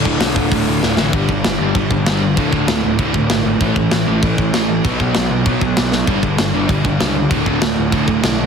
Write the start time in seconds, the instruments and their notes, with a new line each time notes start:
Already playing: overdriven electric guitar D2 A2 D3
0.05 picked electric bass D1, overdriven electric guitar D2 A2 D3, kick
0.20 picked electric bass B1, overdriven electric guitar D2 A2 D3, snare, open hi-hat
0.36 picked electric bass D1, overdriven electric guitar D2 A2 D3, kick
0.52 picked electric bass D1, overdriven electric guitar D2 A2 D3, kick, open hi-hat
0.67 picked electric bass D1, overdriven electric guitar D2 A2 D3
0.82 picked electric bass D1, overdriven electric guitar D2 A2 D3, snare
0.97 picked electric bass A1, overdriven electric guitar D2 A2 D3, snare
1.13 picked electric bass G1, overdriven electric guitar G2 D3 G3, kick, crash
1.29 picked electric bass G1, overdriven electric guitar G2 D3, kick
1.44 picked electric bass G1, overdriven electric guitar G2 D3, snare, crash
1.60 picked electric bass G1, overdriven electric guitar G2 D3 G3
1.75 picked electric bass G1, overdriven electric guitar G2 D3 G3, kick, crash
1.91 picked electric bass G1, overdriven electric guitar G2 D3, kick
2.06 picked electric bass G1, overdriven electric guitar G2 D3 G3, snare, crash
2.23 overdriven electric guitar G2 D3
2.37 picked electric bass D1, overdriven electric guitar D2 A2 D3, kick, crash
2.53 picked electric bass D1, overdriven electric guitar D2 A2 D3, kick
2.68 picked electric bass D1, overdriven electric guitar D2 A2, snare, crash
2.83 picked electric bass D1, overdriven electric guitar D2 A2
2.99 picked electric bass D1, overdriven electric guitar D2 A2 D3, kick, crash
3.14 picked electric bass D1, overdriven electric guitar D2 A2, kick
3.30 picked electric bass G#1, overdriven electric guitar D2 A2, snare, crash
3.45 overdriven electric guitar D2 A2
3.61 picked electric bass A1, overdriven electric guitar A2 E3 A3, kick, crash
3.76 picked electric bass A1, overdriven electric guitar A2 E3, kick
3.91 picked electric bass A1, overdriven electric guitar A2 E3, snare, crash
4.06 picked electric bass A1, overdriven electric guitar A2 E3 A3
4.23 picked electric bass A1, overdriven electric guitar A2 E3 A3, kick, crash
4.38 picked electric bass A1, overdriven electric guitar A2 E3, kick
4.54 picked electric bass A1, overdriven electric guitar A2 E3 A3, snare, crash
4.70 overdriven electric guitar A2 E3
4.85 picked electric bass B1, overdriven electric guitar B2 F#3 B3, kick, crash
5.00 picked electric bass B1, overdriven electric guitar B2 F#3 B3, kick
5.15 picked electric bass B1, overdriven electric guitar B2 F#3, snare, crash
5.30 picked electric bass B1, overdriven electric guitar B2 F#3
5.46 picked electric bass B1, overdriven electric guitar B2 F#3 B3, kick, crash
5.61 picked electric bass B1, overdriven electric guitar B2 F#3, kick
5.76 picked electric bass B1, overdriven electric guitar B2 F#3, snare, crash
5.92 overdriven electric guitar B2 F#3, snare
6.07 picked electric bass G1, overdriven electric guitar G2 D3 G3, kick, crash
6.22 picked electric bass G1, overdriven electric guitar G2 D3, kick
6.38 picked electric bass G1, overdriven electric guitar G2 D3, snare, crash
6.54 picked electric bass G1, overdriven electric guitar G2 D3 G3
6.69 picked electric bass G1, overdriven electric guitar G2 D3 G3, kick, crash
6.85 picked electric bass G1, overdriven electric guitar G2 D3, kick
7.00 picked electric bass C#2, overdriven electric guitar G2 D3 G3, snare, crash
7.16 overdriven electric guitar G2 D3
7.31 picked electric bass D1, overdriven electric guitar D2 A2 D3, kick, crash
7.46 picked electric bass D1, overdriven electric guitar D2 A2 D3, kick
7.62 picked electric bass D1, overdriven electric guitar D2 A2, snare, crash
7.77 picked electric bass D1, overdriven electric guitar D2 A2
7.92 picked electric bass D1, overdriven electric guitar D2 A2 D3, kick, crash
8.08 picked electric bass D1, overdriven electric guitar D2 A2, kick
8.23 picked electric bass B1, overdriven electric guitar D2 A2, snare, crash
8.38 overdriven electric guitar D2 A2